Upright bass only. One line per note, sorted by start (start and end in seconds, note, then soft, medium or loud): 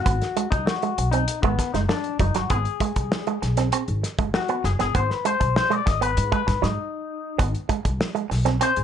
0.06 0.19 G#1 loud
0.52 0.65 C2 medium
0.98 1.24 B1 medium
1.43 1.57 G#1 medium
1.74 1.87 F#1 medium
2.20 2.33 F#1 loud
2.35 2.49 G1 medium
2.50 2.64 G#1 loud
2.97 3.10 C2 medium
3.43 3.69 B1 medium
3.88 4.01 G#1 medium
4.19 4.32 F#1 medium
4.64 4.77 F#1 medium
4.80 4.93 G1 medium
4.95 5.08 G#1 loud
5.41 5.54 B1 medium
5.87 6.13 G#1 medium
6.17 6.30 G#2 loud
6.48 6.61 G#2 loud
6.63 6.76 G#2 medium
7.40 7.53 G#1 medium
7.85 7.98 C2 medium
8.31 8.57 B1 medium
8.77 8.84 G#1 medium